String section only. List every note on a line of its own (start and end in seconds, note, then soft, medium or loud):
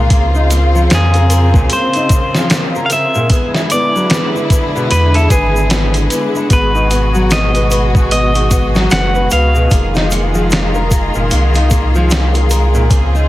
0.00 3.27 F4 medium
0.11 3.28 C#3 medium
0.11 3.28 C4 medium
3.30 6.47 D3 medium
3.30 12.87 G#3 medium
3.30 6.48 E4 medium
6.50 9.67 B2 medium
6.50 9.67 F#4 medium
9.72 12.88 D#3 medium
9.72 12.89 F4 medium
12.90 13.28 C#3 medium
12.90 13.28 C4 medium
12.90 13.28 F4 medium